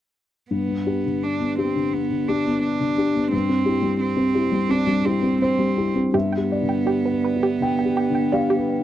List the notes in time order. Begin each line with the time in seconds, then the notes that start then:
0.51 G2 B3
0.68 B3
0.86 D4 G4
1.06 D3
1.23 D4
1.40 B3
1.58 C4 D4 G4
1.75 D3
1.93 B3
2.11 D3
2.28 D4 G4
2.46 B3
2.63 D4
2.81 D3
2.98 D4 G4
3.15 B3
3.32 G2 C4
3.49 C4
3.65 E4 G4
3.82 G3
4.01 C4
4.17 C4
4.35 E4 G4
4.52 G3
4.69 C4 D4
4.87 G3
5.05 C4 E4 G4
5.23 C4
5.42 C4 C5
5.58 G3
5.77 E4 G4
5.95 C4
6.13 G2 B3 G4 E5
6.33 G5
6.37 G4
6.52 D5
6.62 D3
6.69 G5
6.86 G4
7.06 B4
7.11 B4
7.24 B4
7.36 D4
7.43 G4
7.60 D3 G5
7.79 G5
7.85 G4
7.97 G4
8.10 D3
8.15 G5
8.32 G4 D5 F5
8.50 G4
8.57 B4
8.80 D4